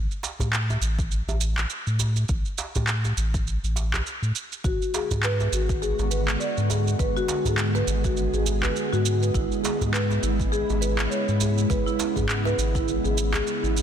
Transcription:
0.11 shaker soft
0.23 djembe slap medium
0.23 shaker medium
0.39 0.77 A2 medium
0.39 djembe tone soft
0.39 djembe bass medium
0.39 shaker soft
0.53 clap medium
0.53 shaker soft
0.70 djembe slap soft
0.70 djembe tone medium
0.70 shaker soft
0.81 1.22 A1 loud
0.81 shaker medium
0.99 kick loud
0.99 shaker soft
1.11 shaker soft
1.27 1.65 A1 loud
1.27 djembe tone medium
1.27 shaker soft
1.41 shaker medium
1.58 clap medium
1.58 shaker soft
1.70 shaker soft
1.87 2.25 A2 medium
1.87 shaker soft
1.99 djembe tone medium
1.99 shaker medium
2.16 djembe tone soft
2.16 shaker soft
2.29 2.42 A1 loud
2.29 kick loud
2.29 shaker soft
2.45 shaker soft
2.58 djembe slap medium
2.58 shaker medium
2.75 3.13 A2 medium
2.75 djembe tone soft
2.75 djembe bass loud
2.75 shaker soft
2.87 clap medium
2.87 shaker soft
3.04 djembe slap soft
3.04 djembe tone medium
3.04 shaker soft
3.17 3.58 A1 loud
3.17 shaker medium
3.34 kick medium
3.34 shaker soft
3.47 shaker soft
3.63 4.01 A1 loud
3.63 shaker soft
3.76 djembe tone medium
3.76 shaker medium
3.94 clap medium
3.94 djembe bass medium
3.94 shaker soft
4.07 shaker soft
4.22 4.32 A2 loud
4.22 shaker soft
4.35 shaker medium
4.52 shaker soft
4.64 4.78 G#1 loud
4.64 9.31 D3 medium
4.64 13.82 G#3 medium
4.64 13.82 B3 medium
4.64 4.74 F#4 medium
4.64 6.98 F#4 medium
4.64 kick loud
4.64 shaker soft
4.82 shaker soft
4.94 5.10 G#4 medium
4.94 djembe slap medium
4.94 shaker medium
5.10 5.48 G#2 medium
5.10 djembe tone soft
5.10 djembe bass medium
5.10 shaker soft
5.23 5.52 B4 loud
5.23 clap medium
5.23 shaker soft
5.40 djembe slap soft
5.40 djembe tone medium
5.40 shaker soft
5.52 5.93 G#1 loud
5.52 5.69 F#4 medium
5.52 shaker medium
5.69 kick loud
5.69 shaker soft
5.82 5.98 G#4 medium
5.82 shaker soft
5.99 6.36 G#1 loud
5.99 djembe tone medium
5.99 shaker soft
6.11 6.27 B4 medium
6.11 shaker medium
6.28 clap medium
6.28 shaker soft
6.40 6.50 D5 medium
6.40 shaker soft
6.57 6.95 G#2 medium
6.57 shaker soft
6.70 6.86 G#4 medium
6.70 djembe tone medium
6.70 shaker medium
6.87 djembe tone soft
6.87 shaker soft
6.99 7.13 G#1 loud
6.99 9.33 G#4 medium
6.99 7.15 B4 medium
6.99 kick loud
6.99 shaker soft
7.17 7.28 F#4 loud
7.17 shaker soft
7.28 djembe slap medium
7.28 shaker medium
7.45 7.83 G#2 medium
7.45 7.74 G#4 medium
7.45 djembe tone soft
7.45 djembe bass medium
7.45 shaker soft
7.58 clap medium
7.58 shaker soft
7.75 7.87 B4 loud
7.75 djembe slap soft
7.75 djembe tone medium
7.75 shaker soft
7.87 8.28 G#1 medium
7.87 shaker medium
8.04 8.17 F#4 medium
8.04 kick medium
8.04 shaker soft
8.17 shaker soft
8.33 8.71 G#1 loud
8.33 8.41 G#4 medium
8.33 shaker soft
8.46 djembe tone medium
8.46 shaker medium
8.63 8.75 B4 medium
8.63 clap medium
8.63 djembe bass medium
8.63 shaker soft
8.76 shaker soft
8.93 9.30 G#2 loud
8.93 9.05 F#4 loud
8.93 shaker soft
9.06 shaker medium
9.22 9.34 B4 medium
9.22 shaker soft
9.34 9.48 G#1 loud
9.34 13.82 C#3 medium
9.34 13.82 E4 medium
9.34 9.44 E4 medium
9.34 kick loud
9.34 shaker soft
9.52 shaker soft
9.64 9.80 G#4 medium
9.64 djembe slap medium
9.64 shaker medium
9.81 10.19 G#2 medium
9.81 djembe tone soft
9.81 djembe bass medium
9.81 shaker soft
9.93 10.22 B4 loud
9.93 clap medium
9.93 shaker soft
10.11 djembe slap soft
10.11 djembe tone medium
10.11 shaker soft
10.23 10.64 G#1 loud
10.23 10.39 E4 medium
10.23 shaker medium
10.40 kick medium
10.40 shaker soft
10.52 10.68 G#4 loud
10.52 shaker soft
10.69 11.07 G#1 loud
10.69 djembe tone medium
10.69 shaker soft
10.81 10.98 B4 medium
10.81 shaker medium
10.99 clap medium
10.99 shaker soft
11.10 11.20 C#5 medium
11.10 shaker soft
11.28 11.66 G#2 medium
11.28 shaker soft
11.40 11.56 G#4 medium
11.40 djembe tone medium
11.40 shaker medium
11.58 djembe tone soft
11.58 shaker soft
11.70 11.83 G#1 loud
11.70 11.86 B4 loud
11.70 kick loud
11.70 shaker soft
11.86 11.99 E4 medium
11.86 shaker soft
12.00 djembe slap medium
12.00 shaker medium
12.16 12.54 G#2 medium
12.16 12.44 G#4 medium
12.16 kick medium
12.16 djembe tone soft
12.16 djembe bass medium
12.16 shaker soft
12.29 clap medium
12.29 shaker soft
12.45 12.58 B4 loud
12.45 djembe slap soft
12.45 djembe tone medium
12.45 shaker soft
12.58 12.99 G#1 loud
12.58 shaker medium
12.75 12.87 E4 medium
12.75 kick medium
12.75 shaker soft
12.88 shaker soft
13.04 13.42 G#1 loud
13.04 13.12 G#4 medium
13.04 shaker soft
13.18 shaker medium
13.33 13.45 G#4 medium
13.33 clap medium
13.33 djembe bass medium
13.33 shaker soft
13.47 shaker soft
13.63 13.82 G#1 medium
13.63 13.75 E4 medium
13.63 shaker soft
13.77 shaker medium

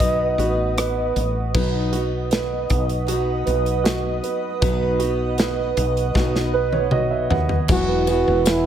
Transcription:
0.00 0.35 B1 medium
0.00 0.39 F#3 medium
0.00 0.78 B3 medium
0.00 0.39 B3 medium
0.00 0.39 D#4 medium
0.00 0.39 F#4 medium
0.00 1.51 B4 medium
0.00 0.37 B4 medium
0.00 1.17 D#5 loud
0.00 1.51 D#5 medium
0.00 1.52 F#5 medium
0.00 1.51 D#6 medium
0.00 kick medium
0.00 closed hi-hat medium
0.38 1.12 A1 medium
0.38 1.55 B3 soft
0.38 1.56 D#4 soft
0.38 1.51 F#4 medium
0.38 1.56 B4 medium
0.38 closed hi-hat medium
0.78 1.52 B3 medium
0.78 cross-stick loud
0.78 closed hi-hat medium
1.16 1.52 A1 medium
1.16 closed hi-hat medium
1.54 2.66 B1 loud
1.54 1.93 B2 medium
1.54 1.93 F#3 medium
1.54 2.30 B3 medium
1.54 1.93 B3 medium
1.54 1.93 D#4 medium
1.54 7.66 B4 medium
1.54 1.91 B4 medium
1.54 7.66 D#5 medium
1.54 7.66 F#5 medium
1.54 7.66 D#6 medium
1.54 kick loud
1.54 crash medium
1.92 3.09 B3 soft
1.92 3.09 D#4 medium
1.92 3.07 F#4 soft
1.92 3.13 B4 medium
1.92 closed hi-hat medium
2.31 3.44 B3 medium
2.31 snare loud
2.31 closed hi-hat medium
2.70 3.43 B1 loud
2.70 kick medium
2.70 closed hi-hat medium
2.89 closed hi-hat medium
3.07 4.62 F#3 medium
3.07 4.63 B3 medium
3.07 3.82 F#4 medium
3.07 closed hi-hat medium
3.12 4.62 D#4 medium
3.12 4.64 B4 medium
3.46 4.20 B1 medium
3.46 4.22 B3 medium
3.46 closed hi-hat medium
3.66 closed hi-hat soft
3.84 4.98 F#4 medium
3.84 snare loud
3.84 closed hi-hat medium
4.23 4.60 B3 medium
4.23 closed hi-hat medium
4.61 5.73 B1 loud
4.61 5.00 B2 medium
4.61 5.01 F#3 medium
4.61 5.36 B3 medium
4.61 5.01 B3 medium
4.61 5.01 D#4 medium
4.61 4.99 B4 loud
4.61 kick loud
4.61 closed hi-hat medium
4.99 6.17 D#4 medium
4.99 6.14 F#4 medium
4.99 6.20 B4 medium
4.99 closed hi-hat medium
5.03 6.16 B3 medium
5.38 6.53 B3 medium
5.38 snare loud
5.38 closed hi-hat medium
5.77 6.13 B1 loud
5.77 closed hi-hat medium
5.97 closed hi-hat medium
6.14 7.27 B1 loud
6.14 7.70 F#3 medium
6.14 7.70 B3 medium
6.14 6.90 F#4 medium
6.14 kick medium
6.14 snare medium
6.19 7.71 D#4 medium
6.19 7.71 B4 medium
6.36 snare medium
6.54 7.29 B3 medium
6.54 6.72 B4 medium
6.73 6.91 C#5 medium
6.73 high tom medium
6.91 7.67 F#4 medium
6.91 7.10 D#5 medium
6.91 mid tom medium
7.11 7.29 E5 medium
7.30 7.67 D#2 medium
7.30 7.68 B3 medium
7.30 7.66 F#5 medium
7.30 floor tom loud
7.49 floor tom medium
7.68 8.23 E1 loud
7.68 8.05 E3 medium
7.68 8.08 E3 medium
7.68 8.08 F#3 medium
7.68 8.09 B3 medium
7.68 8.08 E4 medium
7.68 8.06 F#4 medium
7.68 8.07 F#4 medium
7.68 8.66 B4 medium
7.68 8.66 E5 medium
7.68 8.66 F#5 medium
7.68 8.66 E6 medium
7.68 kick loud
7.68 crash medium
7.68 tambourine soft
7.88 8.25 B3 medium
8.07 8.44 E3 medium
8.07 8.66 E4 soft
8.07 8.66 F#4 medium
8.07 8.52 F#4 medium
8.07 ride medium
8.07 tambourine soft
8.11 8.66 B3 soft
8.26 8.66 E1 medium
8.26 8.64 B3 soft
8.46 8.66 E3 medium
8.46 snare loud
8.46 ride medium
8.46 tambourine medium
8.51 8.66 E4 medium

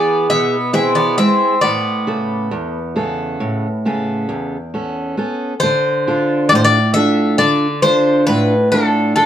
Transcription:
0.00 0.26 E3 medium
0.00 0.26 B3 medium
0.00 0.55 B3 soft
0.00 0.55 E4 soft
0.00 0.56 G#4 medium
0.00 0.26 D5 medium
0.30 1.16 B2 medium
0.30 0.71 B3 medium
0.30 0.71 E5 medium
0.73 0.94 C4 medium
0.73 1.17 E4 soft
0.73 1.17 G#4 medium
0.73 1.44 B4 soft
0.73 0.94 E5 medium
0.95 1.16 B3 medium
0.95 1.16 D5 medium
1.18 1.53 G#3 soft
1.18 1.59 C4 medium
1.18 1.53 E4 soft
1.18 1.54 G#4 medium
1.18 1.59 E5 medium
1.61 2.49 A2 medium
1.61 4.69 B3 medium
1.61 4.69 D5 medium
2.07 2.51 C#3 soft
2.07 2.78 B3 soft
2.07 2.78 A4 medium
2.51 3.37 E2 medium
2.96 3.67 C#3 medium
2.96 3.67 B3 soft
2.96 3.67 A4 medium
3.40 4.26 A2 medium
3.85 4.56 C#3 soft
3.85 4.56 B3 soft
3.85 4.56 A4 medium
4.29 5.15 E2 medium
4.74 5.16 B3 soft
4.74 5.17 C#4 soft
4.74 5.17 A4 medium
5.17 5.53 B3 soft
5.17 5.53 C#4 soft
5.17 5.53 A4 medium
5.60 6.48 D3 medium
5.60 6.49 C5 medium
6.07 6.78 D4 soft
6.07 6.78 F4 soft
6.07 6.78 A4 soft
6.49 7.37 A2 medium
6.49 6.55 D5 loud
6.55 6.63 C5 medium
6.65 6.93 D5 loud
6.94 7.66 D4 soft
6.94 7.66 F4 soft
6.94 7.66 A4 medium
6.94 7.35 E5 loud
7.38 8.24 D3 medium
7.38 7.80 D5 loud
7.82 8.54 D4 soft
7.82 8.54 F4 medium
7.82 8.54 A4 medium
7.82 8.26 C5 loud
8.27 9.13 A2 medium
8.27 8.68 B4 loud
8.72 9.15 D4 medium
8.72 9.16 F4 soft
8.72 9.13 A4 medium
8.72 9.16 A4 medium
9.16 9.26 D4 medium
9.16 9.26 F4 soft
9.16 9.26 A4 medium

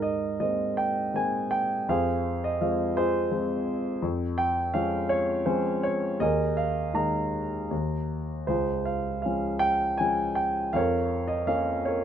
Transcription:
0.00 1.85 G#2 soft
0.00 0.76 D#4 soft
0.00 1.91 A#4 medium
0.00 0.39 D#5 medium
0.40 1.13 G#3 soft
0.40 1.13 A#3 soft
0.40 1.13 C4 soft
0.40 0.79 D#5 medium
0.77 1.12 G5 medium
1.14 1.86 G#3 soft
1.14 1.86 A#3 soft
1.14 1.86 C4 soft
1.14 1.53 G#5 medium
1.51 1.89 G5 medium
1.89 3.99 F2 medium
1.89 2.93 G#4 medium
1.89 2.93 C5 medium
1.89 2.45 F5 medium
2.44 2.60 D#5 medium
2.61 3.29 F3 soft
2.61 3.30 G#3 soft
2.61 3.30 C4 soft
2.61 2.98 F5 medium
2.97 3.99 F4 medium
2.97 3.99 G#4 soft
2.97 3.63 C5 medium
3.31 4.01 F3 soft
3.31 4.01 G#3 soft
3.31 4.01 C4 soft
4.02 6.17 F2 medium
4.38 4.72 G5 medium
4.73 5.44 F3 soft
4.73 5.45 G#3 soft
4.73 5.45 C#4 soft
4.73 5.12 F5 medium
5.09 5.48 C#5 medium
5.45 6.18 F3 medium
5.45 6.18 G#3 soft
5.45 6.18 C#4 medium
5.45 5.84 C5 medium
5.83 6.22 C#5 medium
6.20 7.67 D#2 medium
6.20 7.30 G#4 medium
6.20 7.30 A#4 medium
6.20 6.59 D#5 medium
6.57 6.96 F5 medium
6.94 7.68 D#3 soft
6.94 7.69 G#3 soft
6.94 7.69 A#3 soft
6.94 8.06 D#5 soft
6.94 8.06 A#5 medium
7.71 8.46 D#2 medium
8.47 10.70 C#2 soft
8.47 9.59 F4 soft
8.47 9.59 G#4 soft
8.47 8.88 C5 medium
8.85 9.21 F5 medium
9.22 9.98 F3 soft
9.22 9.98 G#3 soft
9.22 9.98 C#4 soft
9.22 9.58 F5 medium
9.59 10.00 G5 medium
9.98 10.72 F3 soft
9.98 10.72 G#3 soft
9.98 10.73 C#4 soft
9.98 10.38 G#5 medium
10.35 10.75 G5 medium
10.73 12.04 F2 medium
10.73 11.83 A#4 medium
10.73 11.82 C#5 medium
10.73 11.25 F5 medium
11.28 11.46 D#5 medium
11.47 12.04 A#3 soft
11.47 12.04 C#4 soft
11.47 11.82 F5 medium
11.85 12.04 A#4 soft
11.85 12.04 C#5 medium

